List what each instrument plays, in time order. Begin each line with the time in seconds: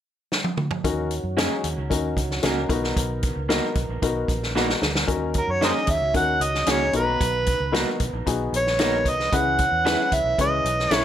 0.32 snare
0.44 high tom
0.57 mid tom
0.71 floor tom
0.84 fingered electric bass D#2, tonewheel organ D#3 C#4 F#4, upright piano C#4 D#4 F#4 A#4, kick, closed hi-hat
1.11 closed hi-hat
1.24 fingered electric bass F#2
1.37 clean electric guitar A#3 C#4 F#4 A#4, upright piano C#4 D#4 F#4 G#4, snare, closed hi-hat
1.64 fingered electric bass D#2, closed hi-hat
1.77 fingered electric bass C#2
1.90 fingered electric bass D#2, upright piano C#4 D#4 F#4 A#4, kick, closed hi-hat
2.16 fingered electric bass C#2, kick, closed hi-hat
2.31 snare
2.43 fingered electric bass C#2, clean electric guitar A#3 C#4 F#4 A#4, upright piano C#4 D#4 F#4 A#4, snare, closed hi-hat
2.69 fingered electric bass B1, upright piano B3 D#4 F#4 A#4, tonewheel organ B3 A#4, kick, closed hi-hat
2.84 snare
2.96 fingered electric bass B1, kick, closed hi-hat
3.23 kick, closed hi-hat
3.36 fingered electric bass C#2
3.49 clean electric guitar A#3 D#4 F#4 A#4, upright piano B3 D#4 F#4 A#4, snare, closed hi-hat
3.75 fingered electric bass B1, kick, closed hi-hat
3.89 fingered electric bass A#1
4.02 fingered electric bass B1, upright piano B3 D#4 F#4 A#4, kick, closed hi-hat
4.28 fingered electric bass A#1, kick, closed hi-hat
4.43 snare
4.55 clean electric guitar A#3 D#4 F#4 A#4, upright piano B3 D#4 F#4 B4, snare
4.69 snare
4.82 fingered electric bass D2, snare
4.95 snare
5.07 fingered electric bass D#2, tonewheel organ D#3 C#4 F#4, upright piano C#4 D#4 F#4 A#4, kick, closed hi-hat
5.34 kick, closed hi-hat
5.38 harmonica A#4
5.48 fingered electric bass F#2, harmonica C#5
5.61 clean electric guitar A#3 C#4 F#4 A#4, upright piano C#4 D#4 F#4 G#4, harmonica A#4 C5 D#5, snare, closed hi-hat
5.87 fingered electric bass D#2, harmonica E5, kick, closed hi-hat
6.00 fingered electric bass C#2
6.14 fingered electric bass D#2, upright piano C#4 D#4 F#4 A#4, harmonica F#5, kick, closed hi-hat
6.40 fingered electric bass C#2, harmonica D#5, closed hi-hat
6.54 snare
6.66 fingered electric bass C#2, clean electric guitar A#3 C#4 F#4 A#4, upright piano C#4 D#4 F#4 G#4, harmonica C#5, snare, closed hi-hat
6.93 fingered electric bass B1, upright piano B3 D#4 F#4 A4, tonewheel organ B3 B4, harmonica B4, closed hi-hat
7.00 upright piano A#5
7.20 fingered electric bass B1, kick, closed hi-hat
7.46 kick, closed hi-hat
7.60 fingered electric bass C#2
7.72 clean electric guitar A#3 D#4 F#4 A#4, upright piano B3 D#4 F#4 A#4, snare, closed hi-hat
8.00 fingered electric bass B1, kick, closed hi-hat
8.13 fingered electric bass A#1
8.26 fingered electric bass B1, upright piano B3 D#4 F#4 G#4, kick, closed hi-hat
8.53 fingered electric bass A#1, closed hi-hat
8.57 harmonica C#5
8.67 snare
8.79 clean electric guitar A#3 D#4 F#4 A#4, upright piano B3 D#4 F#4 A#4, snare, closed hi-hat
9.05 fingered electric bass C2, harmonica D#5, kick, closed hi-hat
9.20 snare
9.32 fingered electric bass C#2, tonewheel organ E3 C#4 B4, upright piano C#4 E4 G#4 B4, harmonica F#5, kick, closed hi-hat
9.58 kick, closed hi-hat
9.72 fingered electric bass E2
9.85 clean electric guitar B3 E4 G#4 B4, upright piano C#4 E4 G#4 B4, snare, closed hi-hat
10.12 fingered electric bass C#2, harmonica E5, kick, closed hi-hat
10.24 fingered electric bass B1
10.38 fingered electric bass C#2, upright piano C#4 E4 G#4 B4, harmonica D#5, kick, closed hi-hat
10.64 fingered electric bass B1, closed hi-hat
10.79 snare
10.91 fingered electric bass B1, clean electric guitar B3 E4 G#4 B4, upright piano C#4 E4 G#4 A#4, snare, closed hi-hat
10.95 harmonica C#5